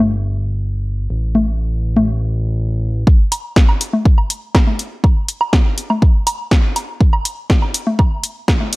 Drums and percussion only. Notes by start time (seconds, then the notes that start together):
1.35 low conga
1.97 low conga
3.07 kick
3.32 closed hi-hat, low woodblock
3.56 kick, snare
3.69 low woodblock
3.81 closed hi-hat
3.93 low conga
4.05 kick
4.18 low woodblock
4.30 closed hi-hat
4.55 kick, snare, low woodblock
4.67 low conga
4.79 closed hi-hat
5.04 kick, low woodblock
5.28 closed hi-hat
5.41 low woodblock
5.53 kick, snare
5.78 closed hi-hat
5.90 low conga, low woodblock
6.02 kick
6.27 closed hi-hat, low woodblock
6.51 kick, snare
6.76 closed hi-hat, low woodblock
7.01 kick
7.13 low woodblock
7.25 closed hi-hat
7.50 kick, snare
7.62 low woodblock
7.74 closed hi-hat
7.87 low conga
7.99 kick, low woodblock
8.24 closed hi-hat
8.48 kick, snare, low woodblock
8.60 low conga
8.73 closed hi-hat